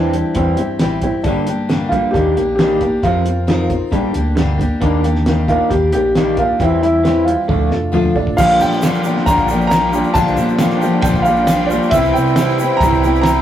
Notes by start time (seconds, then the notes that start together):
Already playing: E2 E3 G3 C4 D4 E4 G4
0.13 E3 G3 C4 E4 G4, closed hi-hat
0.34 E2 E3 G3 C4 E4 G4, kick, closed hi-hat
0.56 G2 E3 G3 C4 E4 G4, closed hi-hat
0.79 A1 E3 G3 C4 E4 G4, snare, closed hi-hat
1.01 G1 E3 G3 C4 E4 G4, kick, closed hi-hat
1.24 G2 D3 G3 D4, kick, closed hi-hat
1.28 A#3 D4 G4
1.47 G2 D3 A#3 D4 G4, closed hi-hat
1.52 G3
1.69 G2 D3 G3 A#3 D4 G4, snare, closed hi-hat
1.89 G2 D3 G3 F4 G4, kick, closed hi-hat
1.93 G3 A#3 D4
2.11 D#2 D#3 G3 A#3 D4 G4, kick
2.15 A#3 D4 G4, closed hi-hat
2.36 A#1 D#3 A#3 D4 G4, closed hi-hat
2.41 A#3
2.56 D#3 G3 A#3 G4, snare, closed hi-hat
2.60 A#3 D4 G4
2.81 D#3 A#3 D4 G4, kick, closed hi-hat
2.85 A#3
3.02 F2 C3 F3 C4 F4 A#4, kick, closed hi-hat
3.25 F2 C3 C4 F4 A#4, closed hi-hat
3.47 F2 C3 F3 C4 D#4 F4 A#4, snare, closed hi-hat
3.69 F2 C3 F4 A#4, kick, closed hi-hat
3.73 C4
3.91 G2 D3 G3 A#3 D4 G4, kick, closed hi-hat
4.13 D2 G2 D3 D4 G4, closed hi-hat
4.18 G3 A#3
4.36 G2 D3 G3 A#3 D4, snare, closed hi-hat
4.40 G4
4.58 G2 D3 G4, kick, closed hi-hat
4.62 G3 A#3 D4
4.81 D#2 D#3 G3 A#3 D4 G4, kick, closed hi-hat
5.03 D#3 A#3 D4 G4, closed hi-hat
5.15 snare
5.26 D#3 G3 A#3 D4 G4, snare, closed hi-hat
5.47 D#3 A#3 D4 F4 G4, kick, closed hi-hat
5.69 D#2 D#3 G3 A#3 D4 G4, kick, closed hi-hat
5.92 A#1 D#3 A#3 D4 G4, closed hi-hat
5.96 A#3
6.15 D#3 G3 A#3 D4 G4, snare, closed hi-hat
6.37 D#3 A#3 D4 F4 G4, kick, closed hi-hat
6.59 E2 E3 G3 C4 E4 G4, kick, closed hi-hat
6.82 E3 G3 C4 E4 G4, closed hi-hat
7.03 E3 G3 C4 E4, snare, closed hi-hat
7.08 G4
7.25 E3 G3 F4 G4, closed hi-hat
7.29 C4 E4
7.48 D2 D3 F3 A3 D4 F4 A4, kick, high tom
7.69 F1 D3 A3 D4 F4 A4, snare
7.92 G1 D3 F3 A3 D4 F4 A4, mid tom
8.05 mid tom
8.15 A1 D3 A3 D4 F4 A4 D5, kick
8.27 kick
8.37 A#1 A#2 D3 F3 G3 A#3 D4 F4 G4 A#4 F5 G5, kick, crash, shaker
8.60 A#2 F3 A#3 D4 G4 G5, shaker
8.72 shaker
8.82 A#2 D3 F3 G3 A#3 D4 F4, snare, ride bell, shaker
8.86 D4 G4
8.94 shaker
9.04 G3 A#3 D4 F4 G4, shaker
9.08 F3
9.16 snare
9.26 A#1 A#2 D3 F3 G3 A#3 D4 F4 G4 A#5, kick, ride bell, shaker
9.38 kick
9.48 G3 D4 F4 G4, shaker
9.53 F3 A#3
9.61 shaker
9.67 A#5, snare, ride bell
9.71 F3 A#3 D4 G4, shaker
9.92 F3 G3 A#3 D4 F4 G4, shaker
10.04 shaker
10.14 A#1 A#2 D3 F3 G3 A#3 D4 F4 G4 C5 A5, kick, ride bell, shaker
10.28 shaker
10.37 A#2 F3 A#3 D4 G4, shaker
10.48 shaker
10.59 A#2 D3 F3 G3 A#3 D4 F4, snare, ride bell, shaker
10.63 G4
10.70 snare
10.81 G3 A#3 D4 F4 G4, shaker
10.85 F3
11.02 A#1 A#2 D3 G3 D4 F4 G5, kick, ride bell, shaker
11.06 D3 F3 A#3 D4 G4
11.14 kick
11.22 F4 F5, shaker
11.26 F3 G3 A#3 D4 G4
11.36 shaker
11.47 F3 A#3 D4 G4, snare, ride bell, shaker
11.66 G4 D5
11.70 F3 G3 A#3 D4 F4, shaker
11.82 shaker
11.90 C2 C3 E3 G3 E4 E5, kick, ride bell, shaker
11.94 G3 C4 E4 G4
12.04 shaker
12.13 C3 E4 G4 G5, shaker
12.18 C4
12.27 shaker
12.36 C3 E3 G3 C4 E4, snare, ride bell, shaker
12.40 G4
12.49 shaker
12.59 G3 C4 E4 G4, shaker
12.64 C4
12.77 C2 A#5, kick
12.81 C3 E3 G3 C4 E4 G4, ride bell, shaker
12.91 kick
13.03 G3 C4 E4 G4, shaker
13.07 C4
13.15 shaker
13.21 G3 A#5, snare, ride bell
13.26 C4 E4 G4, shaker